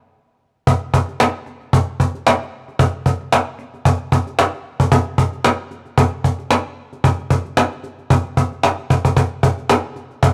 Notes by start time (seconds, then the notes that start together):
0.67 cajon bass
0.94 cajon bass
1.08 cajon slap
1.20 cajon slap
1.46 cajon slap
1.61 cajon slap
1.73 cajon bass
2.00 cajon bass
2.15 cajon slap
2.27 cajon slap
2.42 cajon slap
2.68 cajon slap
2.79 cajon bass
3.06 cajon bass
3.21 cajon slap
3.32 cajon slap
3.59 cajon slap
3.74 cajon slap
3.85 cajon bass
4.12 cajon bass
4.27 cajon slap
4.39 cajon slap
4.54 cajon slap
4.80 cajon bass
4.92 cajon bass
5.18 cajon bass
5.33 cajon slap
5.44 cajon slap
5.71 cajon slap
5.86 cajon slap
5.98 cajon bass
6.24 cajon bass
6.39 cajon slap
6.51 cajon slap
6.93 cajon slap
7.04 cajon bass
7.19 cajon slap
7.30 cajon bass
7.45 cajon slap
7.57 cajon slap
7.72 cajon slap
7.83 cajon slap
7.98 cajon slap
8.10 cajon bass
8.25 cajon slap
8.37 cajon bass
8.52 cajon slap
8.63 cajon slap
8.79 cajon slap
8.90 cajon bass
9.05 cajon bass
9.17 cajon bass
9.43 cajon bass
9.58 cajon slap
9.69 cajon slap
9.96 cajon slap
10.11 cajon slap
10.23 cajon bass